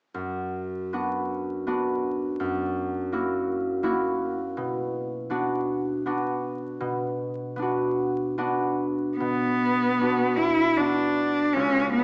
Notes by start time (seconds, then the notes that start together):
0.14 F#2
0.93 B3 D4 F#4
1.67 B3 D4 F#4
2.40 F#2
3.12 A#3 E4 F#4
3.83 A#3 E4 F#4
4.57 B2
5.30 B3 D4 F#4
6.06 B3 D4 F#4
6.80 B2
7.56 B3 D4
7.62 F#4
8.38 B3 D4 F#4
9.17 B2 B3
9.98 B3 D4
10.02 F#4
10.37 E4
10.77 B3 D4 F#4
11.53 C#2 C#4
11.92 B3